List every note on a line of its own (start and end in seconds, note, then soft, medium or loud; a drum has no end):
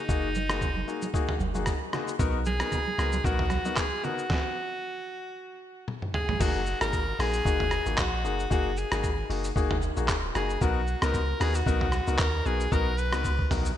0.00 1.37 D#4 medium
0.08 0.84 F#1 loud
0.08 0.27 A#3 medium
0.08 0.27 D#4 medium
0.08 0.27 F#4 medium
0.08 0.27 G#4 loud
0.08 kick loud
0.08 shaker medium
0.35 high conga medium
0.35 shaker medium
0.49 0.66 A#3 medium
0.49 0.66 D#4 medium
0.49 0.66 F#4 medium
0.49 0.66 G#4 medium
0.49 cross-stick loud
0.49 shaker medium
0.61 kick medium
0.61 low conga medium
0.61 shaker medium
0.77 high conga medium
0.87 1.06 A#3 medium
0.87 1.06 D#4 medium
0.87 1.06 F#4 medium
0.87 1.06 G#4 medium
0.87 shaker soft
1.02 high conga medium
1.02 shaker medium
1.14 1.32 A#3 medium
1.14 1.32 D#4 medium
1.14 1.32 F#4 medium
1.14 1.32 G#4 loud
1.14 kick loud
1.14 shaker medium
1.29 mid tom loud
1.40 1.74 F#1 medium
1.40 high conga medium
1.40 shaker soft
1.55 1.71 A#3 medium
1.55 1.71 D#4 medium
1.55 1.71 F#4 medium
1.55 1.71 G#4 medium
1.55 high conga medium
1.55 shaker medium
1.66 kick medium
1.66 cross-stick loud
1.66 shaker medium
1.93 2.11 A#3 medium
1.93 2.11 D#4 medium
1.93 2.11 F#4 medium
1.93 2.11 G#4 medium
1.93 cross-stick medium
1.93 low conga medium
1.93 shaker soft
2.08 shaker medium
2.19 2.63 B1 loud
2.19 2.37 B3 loud
2.19 2.37 D#4 medium
2.19 2.37 F#4 medium
2.19 2.38 A#4 loud
2.19 kick loud
2.19 shaker medium
2.45 3.27 G#4 loud
2.45 high conga medium
2.45 shaker medium
2.60 2.76 B3 medium
2.60 2.76 D#4 medium
2.60 2.76 F#4 medium
2.60 2.76 A#4 medium
2.60 cross-stick loud
2.60 shaker medium
2.72 kick medium
2.72 low conga medium
2.72 shaker medium
2.87 high conga medium
2.98 3.20 C#2 medium
2.98 3.16 B3 medium
2.98 3.16 D#4 medium
2.98 3.16 F#4 medium
2.98 3.16 A#4 medium
2.98 cross-stick medium
2.98 shaker soft
3.12 high conga medium
3.12 shaker medium
3.24 3.58 B1 loud
3.24 3.43 B3 medium
3.24 3.43 D#4 medium
3.24 3.43 F#4 medium
3.24 3.79 F#4 loud
3.24 3.43 A#4 loud
3.24 kick loud
3.24 shaker medium
3.39 mid tom loud
3.50 cross-stick medium
3.50 high conga medium
3.50 shaker soft
3.65 3.81 B3 medium
3.65 3.82 D#4 medium
3.65 3.82 F#4 medium
3.65 3.82 A#4 medium
3.65 high conga medium
3.65 shaker medium
3.76 4.06 G#4 loud
3.76 kick medium
3.76 cross-stick medium
3.76 clap loud
3.76 shaker medium
4.03 4.21 B3 medium
4.03 4.22 D#4 medium
4.03 4.22 F#4 medium
4.03 5.88 F#4 loud
4.03 4.22 A#4 medium
4.03 low conga medium
4.03 shaker soft
4.18 shaker medium
4.30 kick loud
4.30 snare medium
5.88 high tom medium
6.02 mid tom medium
6.14 6.42 G#4 medium
6.14 mid tom medium
6.29 floor tom loud
6.40 6.74 F#1 loud
6.40 6.58 A#3 medium
6.40 6.58 D#4 medium
6.40 6.58 F#4 medium
6.40 6.81 F#4 loud
6.40 6.59 G#4 loud
6.40 kick loud
6.40 crash loud
6.40 shaker medium
6.66 shaker medium
6.81 7.13 G#1 medium
6.81 6.97 A#3 medium
6.81 6.97 D#4 medium
6.81 6.97 F#4 medium
6.81 6.98 G#4 medium
6.81 7.22 A#4 loud
6.81 cross-stick loud
6.81 shaker medium
6.93 kick loud
6.93 shaker medium
7.19 7.41 A#1 loud
7.19 7.37 A#3 medium
7.19 7.37 D#4 medium
7.19 7.37 F#4 medium
7.19 7.37 G#4 medium
7.19 8.00 G#4 loud
7.19 cross-stick loud
7.19 open hi-hat medium
7.19 shaker soft
7.33 shaker medium
7.45 7.79 F#1 loud
7.45 7.63 A#3 medium
7.45 7.63 D#4 medium
7.45 7.64 F#4 medium
7.45 7.64 G#4 loud
7.45 kick loud
7.45 shaker medium
7.60 mid tom loud
7.71 cross-stick medium
7.71 shaker soft
7.86 7.96 G#1 medium
7.86 8.02 A#3 medium
7.86 8.03 D#4 medium
7.86 8.03 F#4 medium
7.86 8.03 G#4 medium
7.86 shaker medium
7.98 8.26 A#1 medium
7.98 8.51 F#4 loud
7.98 kick medium
7.98 cross-stick loud
7.98 clap loud
7.98 shaker medium
8.24 8.47 F#1 medium
8.24 8.42 A#3 medium
8.24 8.42 D#4 medium
8.24 8.43 F#4 medium
8.24 8.43 G#4 medium
8.24 shaker soft
8.39 shaker medium
8.50 8.85 F#1 loud
8.50 8.69 A#3 loud
8.50 8.69 D#4 medium
8.50 8.69 F#4 medium
8.50 8.80 F#4 medium
8.50 8.69 G#4 loud
8.50 kick loud
8.50 shaker medium
8.77 9.30 G#4 loud
8.77 shaker medium
8.91 9.24 G#1 medium
8.91 9.08 A#3 medium
8.91 9.08 D#4 medium
8.91 9.08 F#4 medium
8.91 9.08 G#4 medium
8.91 cross-stick loud
8.91 shaker medium
9.03 kick loud
9.03 shaker medium
9.29 9.52 F#1 loud
9.29 9.48 A#3 medium
9.29 9.48 D#4 medium
9.29 9.48 F#4 medium
9.29 9.48 G#4 medium
9.29 open hi-hat medium
9.29 shaker soft
9.44 shaker medium
9.56 9.90 F#1 loud
9.56 9.74 A#3 loud
9.56 9.74 D#4 medium
9.56 9.74 F#4 medium
9.56 9.74 G#4 loud
9.56 kick loud
9.56 shaker medium
9.71 mid tom loud
9.82 shaker soft
9.96 10.10 A#1 medium
9.96 10.13 A#3 medium
9.96 10.13 D#4 medium
9.96 10.13 F#4 medium
9.96 10.13 G#4 medium
9.96 shaker medium
10.08 10.31 D#1 medium
10.08 kick medium
10.08 cross-stick loud
10.08 clap loud
10.08 shaker medium
10.35 10.57 F#1 loud
10.35 10.53 A#3 medium
10.35 10.53 D#4 medium
10.35 10.53 F#4 medium
10.35 10.53 G#4 medium
10.35 10.64 G#4 medium
10.35 cross-stick loud
10.35 shaker soft
10.50 shaker medium
10.61 10.95 B1 loud
10.61 10.79 B3 loud
10.61 10.80 D#4 medium
10.61 10.80 F#4 medium
10.61 11.05 F#4 medium
10.61 10.80 A#4 loud
10.61 kick loud
10.61 shaker medium
10.87 shaker medium
11.02 11.34 C#2 medium
11.02 11.18 B3 medium
11.02 11.18 D#4 medium
11.02 11.18 F#4 medium
11.02 11.19 A#4 medium
11.02 11.43 A#4 loud
11.02 cross-stick loud
11.02 shaker medium
11.14 kick medium
11.14 shaker medium
11.40 11.62 D#2 loud
11.40 11.58 B3 medium
11.40 11.58 D#4 medium
11.40 11.58 F#4 medium
11.40 11.57 G#4 loud
11.40 11.58 A#4 medium
11.40 cross-stick loud
11.40 open hi-hat medium
11.40 shaker soft
11.54 12.21 F#4 loud
11.54 shaker medium
11.66 12.00 B1 loud
11.66 11.85 B3 loud
11.66 11.85 D#4 medium
11.66 11.85 F#4 medium
11.66 11.85 A#4 loud
11.66 kick loud
11.66 shaker medium
11.81 mid tom loud
11.92 cross-stick medium
11.92 shaker soft
12.07 12.17 C#2 loud
12.07 12.24 B3 medium
12.07 12.24 D#4 medium
12.07 12.24 F#4 medium
12.07 12.24 A#4 medium
12.07 shaker medium
12.18 12.41 D#2 loud
12.18 12.48 A#4 loud
12.18 kick medium
12.18 cross-stick loud
12.18 clap loud
12.18 shaker medium
12.45 12.68 B1 loud
12.45 12.64 B3 medium
12.45 12.64 D#4 medium
12.45 12.64 F#4 medium
12.45 12.74 G#4 loud
12.45 12.64 A#4 medium
12.45 shaker soft
12.60 shaker medium
12.72 13.14 B1 loud
12.72 12.90 B3 loud
12.72 12.90 D#4 medium
12.72 12.90 F#4 medium
12.72 13.00 A#4 loud
12.72 12.90 A#4 loud
12.72 kick loud
12.72 shaker medium
12.98 13.51 B4 loud
12.98 shaker medium
13.12 13.45 C#2 medium
13.12 13.29 B3 medium
13.12 13.29 D#4 medium
13.12 13.29 F#4 medium
13.12 13.29 A#4 medium
13.12 cross-stick loud
13.12 shaker medium
13.24 kick medium
13.24 shaker medium
13.39 kick medium
13.50 13.73 B1 medium
13.50 13.69 B3 medium
13.50 13.69 D#4 medium
13.50 13.69 F#4 medium
13.50 13.69 A#4 medium
13.50 mid tom loud
13.50 open hi-hat medium
13.50 shaker soft
13.65 shaker medium